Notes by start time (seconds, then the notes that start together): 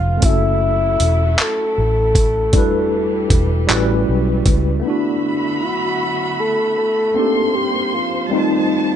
Already playing: F1 C#3 G#3 B3 C#4 D#4 F4 B4 F5
0.17 A3 C#4
0.22 F#1 F#3 E4 F#4 A4 E5, kick, closed hi-hat
0.29 A4
1.00 E1, closed hi-hat
1.38 A4, clap, closed hi-hat
1.78 A1
2.15 kick, closed hi-hat
2.52 E1 E3 G3 D4 E4, kick, closed hi-hat
2.56 F#4 B4
3.30 E1, kick, closed hi-hat
3.67 A1 G3 A3 C#4 E4, clap, closed hi-hat
3.71 F#4 B4
4.09 B1
4.46 C#2, kick, closed hi-hat
4.80 A3 B3
4.85 D3 D4 E4 F#4 E5 B5
4.90 F#4
5.63 F#4
6.40 A4
6.78 A4
7.14 A#3 C4 D4 C5 C6
7.18 D#4 G4
7.55 G4
7.94 F4
8.29 F3 G3 A3 C4 D#4 A5
8.33 D#4 F4